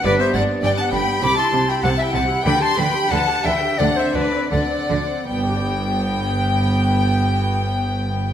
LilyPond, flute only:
\new Staff \with { instrumentName = "Flute" } { \time 4/4 \key g \major \tempo 4 = 86 b'16 c''16 d''8 d''16 fis''16 g''8 b''16 a''8 g''16 fis''16 e''16 fis''8 | g''16 a''16 g''8 fis''8 e''8 d''16 c''16 b'8 d''4 | g''1 | }